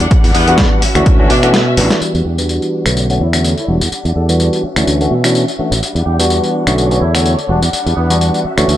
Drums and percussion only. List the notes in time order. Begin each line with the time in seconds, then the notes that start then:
0.00 closed hi-hat
0.11 kick, closed hi-hat
0.24 open hi-hat
0.35 open hi-hat
0.48 closed hi-hat
0.58 kick, snare, closed hi-hat
0.82 open hi-hat
0.95 finger snap, closed hi-hat
1.06 kick, closed hi-hat
1.30 open hi-hat
1.43 finger snap, closed hi-hat
1.54 snare, closed hi-hat
1.77 open hi-hat
1.90 snare, closed hi-hat
2.02 tambourine
2.15 tambourine
2.38 tambourine
2.49 tambourine
2.62 tambourine
2.86 finger snap, tambourine
2.97 tambourine
3.10 tambourine
3.33 finger snap, tambourine
3.44 tambourine
3.57 tambourine
3.81 tambourine
3.92 tambourine
4.05 tambourine
4.29 tambourine
4.40 tambourine
4.53 tambourine
4.76 finger snap, tambourine
4.87 tambourine
5.01 tambourine
5.24 finger snap, tambourine
5.35 tambourine
5.48 tambourine
5.72 tambourine
5.83 tambourine
5.96 tambourine
6.20 tambourine
6.30 tambourine
6.44 tambourine
6.67 finger snap, tambourine
6.78 tambourine
6.91 tambourine
7.15 finger snap, tambourine
7.26 tambourine
7.39 tambourine
7.62 tambourine
7.73 tambourine
7.87 tambourine
8.10 tambourine
8.21 tambourine
8.34 tambourine
8.58 finger snap, tambourine
8.69 tambourine